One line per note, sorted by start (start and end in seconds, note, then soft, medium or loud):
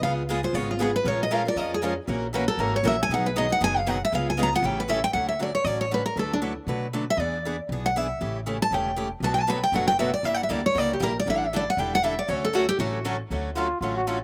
0.01 0.43 C#2 medium
0.01 0.22 C#3 medium
0.01 0.22 G#3 medium
0.01 0.22 B3 medium
0.01 0.22 F4 medium
0.01 0.22 G#4 medium
0.01 0.12 F5 medium
0.30 0.40 C#3 medium
0.30 0.40 G#3 medium
0.30 0.40 B3 medium
0.30 0.40 F4 loud
0.30 0.40 G#4 loud
0.43 0.54 B3 soft
0.43 0.54 F4 medium
0.43 0.54 G#4 medium
0.43 0.55 C5 medium
0.53 0.94 G#1 medium
0.53 0.73 C#3 medium
0.53 0.73 G#3 medium
0.53 0.73 B3 medium
0.53 0.73 F4 medium
0.53 0.73 G#4 medium
0.53 0.68 C#5 medium
0.71 0.81 F4 medium
0.80 0.90 C#3 medium
0.80 0.90 G#3 loud
0.80 0.90 B3 loud
0.80 0.91 F4 medium
0.80 0.91 G#4 loud
0.80 0.95 G#4 medium
0.96 1.06 B4 medium
1.05 1.46 A#1 medium
1.05 1.24 F3 medium
1.05 1.24 G#3 medium
1.05 1.23 C#4 medium
1.05 1.24 F4 medium
1.05 1.24 A#4 medium
1.05 1.20 C#5 medium
1.23 1.34 D#5 medium
1.31 1.41 F3 medium
1.31 1.41 G#3 loud
1.31 1.41 C#4 medium
1.31 1.42 F4 loud
1.31 1.42 A#4 loud
1.31 1.46 F5 loud
1.45 1.57 C#4 medium
1.45 1.57 F4 soft
1.45 1.56 A#4 medium
1.45 1.57 D5 medium
1.56 1.97 F2 medium
1.56 1.75 F3 medium
1.56 1.75 G#3 medium
1.56 1.75 C#4 medium
1.56 1.75 F4 medium
1.56 1.75 A#4 medium
1.56 1.71 D#5 medium
1.74 1.80 G#4 medium
1.83 1.93 F3 loud
1.83 1.93 G#3 loud
1.83 1.93 C#4 medium
1.83 1.93 F4 medium
1.83 1.93 A#4 loud
2.07 2.48 A#1 medium
2.07 2.25 E3 medium
2.07 2.26 A#3 medium
2.07 2.26 C#4 medium
2.07 2.26 F#4 medium
2.07 2.26 A#4 medium
2.33 2.43 E3 medium
2.33 2.43 A#3 medium
2.33 2.44 C#4 medium
2.33 2.44 F#4 medium
2.33 2.44 A#4 loud
2.33 2.48 B4 medium
2.48 2.59 C#4 soft
2.48 2.59 F#4 medium
2.48 2.61 A4 loud
2.48 2.58 A#4 medium
2.57 2.80 G#1 medium
2.57 2.77 E3 medium
2.57 2.77 A#3 medium
2.57 2.77 C#4 medium
2.57 2.77 F#4 medium
2.57 2.78 A#4 medium
2.57 2.74 A#4 medium
2.76 2.85 C#5 medium
2.83 3.05 A#1 medium
2.83 2.94 E3 loud
2.83 2.94 A#3 medium
2.83 2.95 C#4 loud
2.83 2.95 F#4 loud
2.83 2.95 A#4 loud
2.87 3.00 E5 medium
3.03 3.12 G#5 loud
3.09 3.50 B1 medium
3.09 3.28 B2 medium
3.09 3.28 D#3 medium
3.09 3.28 F#3 medium
3.09 3.28 B3 medium
3.09 3.29 D#4 medium
3.09 3.29 G#4 medium
3.14 3.26 F#5 medium
3.26 3.36 B4 medium
3.36 3.46 B2 medium
3.36 3.46 D#3 loud
3.36 3.46 F#3 medium
3.36 3.46 B3 medium
3.36 3.46 D#4 loud
3.36 3.46 G#4 loud
3.36 3.50 D#5 medium
3.49 3.60 F#3 medium
3.49 3.60 B3 soft
3.49 3.60 D#4 medium
3.49 3.60 G#4 medium
3.49 3.62 F#5 loud
3.61 4.02 F#1 medium
3.61 3.79 B2 medium
3.61 3.79 D#3 medium
3.61 3.79 F#3 medium
3.61 3.79 B3 medium
3.61 3.79 D#4 medium
3.61 3.79 G#4 medium
3.61 3.78 G#5 loud
3.78 3.88 F5 medium
3.87 3.97 B2 medium
3.87 3.97 D#3 medium
3.87 3.97 F#3 loud
3.87 3.97 B3 loud
3.87 3.97 D#4 loud
3.87 3.97 G#4 medium
3.87 4.01 F#5 loud
4.05 4.14 E5 loud
4.12 4.53 C#2 loud
4.12 4.31 C#3 medium
4.12 4.31 G#3 medium
4.12 4.31 B3 medium
4.12 4.31 F4 medium
4.12 4.31 G#4 medium
4.12 4.27 F5 medium
4.30 4.39 G#5 medium
4.39 4.48 C#3 medium
4.39 4.48 G#3 loud
4.39 4.48 B3 medium
4.39 4.49 F4 loud
4.39 4.48 G#4 loud
4.43 4.54 A#5 loud
4.53 4.64 B3 medium
4.53 4.64 F4 medium
4.53 4.63 G#4 medium
4.53 4.67 F#5 loud
4.62 5.04 A1 loud
4.62 4.82 C#3 medium
4.62 4.81 E3 medium
4.62 4.81 G3 medium
4.62 4.82 A3 medium
4.62 4.82 C#4 medium
4.62 4.82 E4 medium
4.62 4.82 G4 medium
4.62 4.82 A4 medium
4.67 4.79 G5 loud
4.80 4.90 B4 medium
4.88 4.99 C#3 medium
4.88 4.99 E3 loud
4.88 4.99 G3 loud
4.88 4.99 A3 loud
4.88 4.99 C#4 medium
4.88 4.99 E4 loud
4.88 4.99 G4 loud
4.88 4.99 A4 loud
4.88 5.03 E5 loud
5.04 5.13 G5 loud
5.13 5.55 D2 medium
5.13 5.32 D3 medium
5.13 5.32 F#3 medium
5.13 5.33 A3 medium
5.13 5.33 C#4 medium
5.13 5.33 F#4 medium
5.13 5.28 F#5 medium
5.29 5.39 E5 medium
5.39 5.50 D3 medium
5.39 5.50 F#3 medium
5.39 5.50 A3 medium
5.39 5.50 C#4 medium
5.39 5.50 F#4 medium
5.39 5.54 D5 medium
5.55 5.65 C#5 medium
5.64 6.06 A1 medium
5.64 5.84 D3 medium
5.64 5.84 F#3 medium
5.64 5.84 A3 medium
5.64 5.84 C#4 medium
5.64 5.84 F#4 medium
5.64 5.79 D5 medium
5.81 5.91 C#5 medium
5.91 6.01 D3 medium
5.91 6.01 F#3 medium
5.91 6.01 A3 loud
5.91 6.01 C#4 medium
5.91 6.01 F#4 medium
5.91 6.05 B4 medium
6.06 6.16 A#4 medium
6.16 6.57 D2 medium
6.16 6.35 D3 medium
6.16 6.35 F#3 medium
6.16 6.35 A3 medium
6.16 6.35 D4 medium
6.16 6.35 F#4 medium
6.16 6.32 A4 medium
6.16 6.35 B4 medium
6.33 6.39 D4 medium
6.42 6.52 D3 medium
6.42 6.52 F#3 medium
6.42 6.52 A3 medium
6.42 6.52 D4 medium
6.42 6.52 F#4 loud
6.42 6.52 B4 loud
6.67 7.08 B2 medium
6.67 6.86 D3 medium
6.67 6.86 F#3 medium
6.67 6.86 A3 medium
6.67 6.86 D4 medium
6.67 6.86 F#4 medium
6.67 6.86 B4 medium
6.93 7.03 D3 medium
6.93 7.03 F#3 medium
6.93 7.03 A3 medium
6.93 7.04 D4 loud
6.93 7.04 F#4 loud
6.93 7.04 B4 loud
7.10 7.20 E5 loud
7.17 7.58 E2 loud
7.17 7.37 E3 medium
7.17 7.37 B3 medium
7.17 7.37 D4 medium
7.17 7.37 G#4 medium
7.17 7.59 D5 medium
7.45 7.55 E3 medium
7.45 7.55 B3 medium
7.45 7.55 D4 medium
7.45 7.55 G#4 loud
7.69 8.10 B1 medium
7.69 7.89 E3 medium
7.69 7.89 B3 medium
7.69 7.89 D4 medium
7.69 7.89 G#4 medium
7.86 7.97 F#5 loud
7.96 8.06 E3 loud
7.96 8.06 B3 loud
7.96 8.06 D4 loud
7.96 8.06 G#4 loud
7.96 8.36 E5 medium
8.21 8.62 A1 medium
8.21 8.39 C#3 medium
8.21 8.39 E3 medium
8.21 8.39 A3 medium
8.21 8.39 C#4 medium
8.21 8.39 G4 medium
8.46 8.56 C#3 medium
8.46 8.57 E3 medium
8.46 8.57 A3 loud
8.46 8.57 C#4 loud
8.46 8.57 G4 loud
8.62 8.72 A5 loud
8.71 9.12 E1 medium
8.71 8.90 C#3 medium
8.71 8.90 E3 medium
8.71 8.91 A3 medium
8.71 8.90 C#4 medium
8.71 8.91 G4 medium
8.71 9.10 G5 medium
8.96 9.07 C#3 medium
8.96 9.07 E3 medium
8.96 9.08 A3 medium
8.96 9.07 C#4 loud
8.96 9.08 G4 loud
9.20 9.62 B1 medium
9.20 9.41 B2 medium
9.20 9.41 F#3 medium
9.20 9.41 A3 medium
9.20 9.42 D4 medium
9.20 9.42 F#4 medium
9.20 9.41 B4 medium
9.20 9.32 A5 medium
9.34 9.41 G5 medium
9.41 9.49 A5 medium
9.48 9.58 B2 medium
9.48 9.58 F#3 medium
9.48 9.58 A3 loud
9.48 9.59 D4 medium
9.48 9.59 F#4 medium
9.48 9.58 B4 loud
9.48 9.63 B5 loud
9.63 9.74 G5 loud
9.72 10.14 F#1 medium
9.72 9.91 B2 medium
9.72 9.92 F#3 medium
9.72 9.92 A3 medium
9.72 9.92 D4 medium
9.72 9.92 F#4 medium
9.72 9.92 B4 medium
9.72 9.87 F#5 medium
9.88 9.99 G5 loud
9.99 10.09 B2 medium
9.99 10.09 F#3 medium
9.99 10.09 A3 loud
9.99 10.10 D4 loud
9.99 10.10 F#4 loud
9.99 10.10 B4 loud
9.99 10.13 E5 medium
10.14 10.25 D5 medium
10.23 10.44 G1 medium
10.23 10.42 D3 medium
10.23 10.43 G3 medium
10.23 10.43 A#3 medium
10.23 10.43 E4 medium
10.23 10.43 G4 medium
10.23 10.34 E5 loud
10.34 10.42 F#5 loud
10.43 10.52 E5 medium
10.49 10.71 D2 medium
10.49 10.60 D3 medium
10.49 10.60 G3 loud
10.49 10.61 A#3 medium
10.49 10.61 E4 medium
10.49 10.61 G4 loud
10.49 10.65 D5 medium
10.66 10.78 C#5 loud
10.75 10.97 C#2 medium
10.75 10.94 D3 medium
10.75 10.95 G3 medium
10.75 10.95 A#3 medium
10.75 10.95 E4 medium
10.75 10.95 G4 medium
10.75 10.91 D5 medium
10.93 11.03 G4 medium
11.00 11.22 A#1 medium
11.00 11.12 D3 medium
11.00 11.12 G3 loud
11.00 11.12 A#3 loud
11.00 11.12 E4 loud
11.00 11.12 G4 loud
11.00 11.16 A#4 medium
11.20 11.29 D5 loud
11.26 11.67 A1 medium
11.26 11.45 D3 medium
11.26 11.45 G3 medium
11.26 11.45 D4 medium
11.26 11.45 E4 medium
11.26 11.46 A4 medium
11.26 11.38 E5 medium
11.38 11.46 F#5 loud
11.46 11.53 E5 medium
11.53 11.63 D3 medium
11.53 11.63 G3 medium
11.53 11.63 D4 medium
11.53 11.63 E4 loud
11.53 11.63 A4 loud
11.53 11.68 D5 loud
11.70 11.80 F#5 loud
11.77 12.18 E1 medium
11.77 11.96 D3 medium
11.77 11.96 G3 medium
11.77 11.96 D4 medium
11.77 11.97 E4 medium
11.77 11.97 A4 medium
11.77 11.93 G5 loud
11.95 12.05 F#5 loud
12.03 12.13 D3 medium
12.03 12.14 G3 medium
12.03 12.14 D4 loud
12.03 12.13 E4 loud
12.03 12.14 A4 loud
12.03 12.18 E5 loud
12.19 12.29 D5 medium
12.28 12.69 D2 medium
12.28 12.47 D3 medium
12.28 12.47 F#3 medium
12.28 12.47 A3 medium
12.28 12.47 C#4 medium
12.28 12.47 F#4 medium
12.28 12.47 A4 medium
12.28 12.42 C#5 medium
12.45 12.55 A4 medium
12.54 12.64 D3 medium
12.54 12.65 F#3 loud
12.54 12.64 A3 loud
12.54 12.64 C#4 loud
12.54 12.65 F#4 loud
12.54 12.68 F#4 medium
12.54 12.64 A4 loud
12.69 12.79 G4 loud
12.79 13.20 A1 loud
12.79 12.97 D3 medium
12.79 12.98 F#3 medium
12.79 12.98 A3 medium
12.79 12.98 C#4 medium
12.79 13.17 F#4 medium
12.79 12.98 F#4 medium
12.79 12.98 A4 medium
13.05 13.15 D3 loud
13.05 13.15 F#3 loud
13.05 13.16 A3 loud
13.05 13.15 C#4 loud
13.05 13.16 F#4 loud
13.05 13.16 A4 medium
13.30 13.71 D2 medium
13.30 13.49 D3 medium
13.30 13.49 F#3 medium
13.30 13.49 A3 medium
13.30 13.49 C#4 medium
13.30 13.50 F#4 medium
13.30 13.49 A4 medium
13.55 13.67 D3 medium
13.55 13.67 F#3 medium
13.55 13.67 A3 medium
13.55 13.67 C#4 loud
13.55 13.80 F4 medium
13.55 13.67 F#4 medium
13.55 13.66 A4 loud
13.81 14.22 A1 medium
13.81 14.00 D3 medium
13.81 14.00 F#3 medium
13.81 14.00 A3 medium
13.81 14.01 C#4 medium
13.81 13.95 F4 medium
13.81 14.01 F#4 medium
13.81 14.00 A4 medium
13.96 14.09 F#4 medium
14.07 14.17 D3 medium
14.07 14.17 F#3 medium
14.07 14.17 A3 medium
14.07 14.18 C#4 medium
14.07 14.21 F4 medium
14.07 14.18 F#4 medium
14.07 14.17 A4 medium